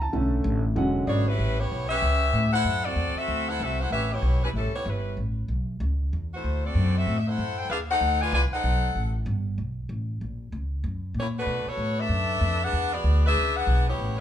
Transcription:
Already playing: upright bass C#2
0.02 upright piano A5
0.13 upright bass B1, upright piano D3 A3 C#4
0.44 upright bass A1
0.76 upright bass E1, upright piano D3 F#3 G#3 C#4 F#5
1.07 upright bass G#1, saxophone section B3 F#4 G#4 C#5, upright piano D5
1.27 saxophone section G3 C#4 E4 B4
1.39 upright bass A1
1.58 saxophone section B3 E4 G4 C#5
1.72 upright bass B1
1.89 saxophone section C#4 G4 B4 E5
2.02 upright bass C#2
2.33 upright bass A2
2.53 saxophone section E4 A4 C5 F#5
2.64 upright bass F#2
2.85 saxophone section C4 F#4 A4 D5
2.96 upright bass E2
3.15 saxophone section C4 F#4 A4 E5, muted upright bass stroke
3.28 upright bass D2
3.49 saxophone section E4 A4 C5 F#5
3.60 upright bass C2, saxophone section C4 F#4 A4 E5
3.81 saxophone section E4 A4 C5 F#5
3.90 upright bass A1, saxophone section C#4 G4 B4 E5
4.12 saxophone section B3 E4 G4 C#5
4.22 upright bass B1
4.44 saxophone section G3 C#4 E4 B4
4.53 upright bass A1, saxophone section G3 C#4 E4 A4
4.73 saxophone section B3 E4 G4 C#5, muted upright bass stroke
4.86 upright bass G1, saxophone section G3 C#4 E4 B4
5.17 upright bass A1
5.48 upright bass B1
5.80 upright bass C#2
6.13 upright bass E2
6.34 saxophone section A3 E4 F#4 C5
6.44 upright bass D2
6.65 saxophone section C4 F#4 A4 D5
6.75 upright bass F#2
6.97 saxophone section C4 F#4 A4 E5
7.07 upright bass A2
7.19 saxophone section E5
7.28 saxophone section E4 A4 C5 F#5
7.38 upright bass F#2
7.58 saxophone section E4 A4 C5 G5
7.69 upright bass D#2, saxophone section D4 G#4 B4 F5
7.91 saxophone section D#4 A4 C5 F#5
8.01 upright bass D2
8.22 saxophone section F4 B4 D5 G#5
8.32 upright bass C2, saxophone section F4 B4 D5 G#5
8.51 saxophone section D#4 A4 C5 F#5, muted upright bass stroke
8.64 upright bass B1
8.95 upright bass A1
9.26 upright bass G1
9.58 upright bass B1
9.89 upright bass A1
10.21 upright bass A#1
10.52 upright bass C#2
10.84 upright bass F#2
11.14 upright bass A#2
11.19 saxophone section A#3 E4 G4 C#5
11.39 saxophone section A3 D4 F#4 B4
11.46 upright bass B2
11.66 saxophone section B3 F#4 A4 C#5, muted upright bass stroke
11.77 upright bass A2
12.00 saxophone section D4 A4 B4 E5
12.09 upright bass F#2
12.41 upright bass F2
12.63 saxophone section D4 G#4 B4 F#5
12.73 upright bass E2
12.93 saxophone section B3 F#4 G#4 D5
13.04 upright bass D2
13.26 saxophone section D4 G#4 B4 E5
13.36 upright bass C#2
13.56 saxophone section D4 G#4 B4 F#5
13.67 upright bass B1
13.88 saxophone section B3 E4 G4 C#5
13.98 upright bass A1

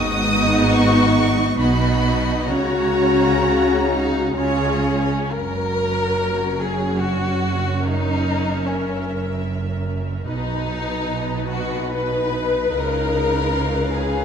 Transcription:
Already playing: double bass section G#1, cello section G#2, viola section B3 D#4, violin section F#4 D#5 D#6
0.73 violin section C#6
1.59 double bass section B1, cello section B2, viola section B3 D#4, violin section F#4 D#5 B5
2.47 double bass section C#2, cello section C#3, viola section C#4 F#4, violin section F#4 C#5 A#5
3.88 violin section D#4
4.36 double bass section C#2, cello section C#3, viola section C#4 F4, violin section C#4 G#4 C#5
5.32 double bass section F#1, cello section F#2, viola section C#4 F#4, violin section A#4 C#5
6.61 violin section G#4
7.02 violin section F#4
7.81 violin section D#4 E5, viola section A#4
8.64 violin section C#4
10.27 double bass section B1, cello section B2, violin section D#4 D#5, viola section D#4 B4
11.50 violin section F#4
11.94 violin section B4
12.75 double bass section C#2, cello section C#3, violin section A#4 F5
13.94 violin section G#4

